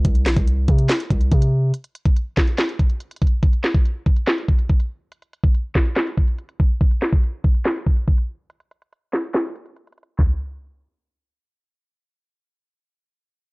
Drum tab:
HH |x-x-x-x-x---x-x-x-x-x-x-x-x-----|x-x-x-x-x---x-x-x-x-x-x-x-xxxx--|x-x-x-x-x---x-x-x-x-x-x-x-x-----|x-x-x-x-x---x-x-x-x-x-x-x-x-----|
CP |----x-----------x---------------|------------x---x---------------|----x-----------x---------------|------------x---x---------------|
SD |----o-----------o---------------|------------o---o---------------|----o-----------o---------------|------------o---o---------------|
FT |--------------------------------|--------------------------------|--------------------------------|--------------------------------|
BD |o-----o-----o-------o---o-------|------o-----o-------o-------o---|o-----o-----o-------o---o-------|------o-----o-------o-------o---|

HH |x-x-x-x-x---x-x-x-x-x-x-x-x-----|x-x-x-x-x---x-x-x-x-x-x-x-xxxx--|--------------------------------|--------------------------------|
CP |----x-----------x---------------|------------x---x---------------|x-------------------------------|--------------------------------|
SD |----o-----------o---------------|------------o---o---------------|--------------------------------|--------------------------------|
FT |--------------------------------|--------------------------------|o-------------------------------|--------------------------------|
BD |o-----o-----o-------o---o-------|--------------------------------|o-------------------------------|--------------------------------|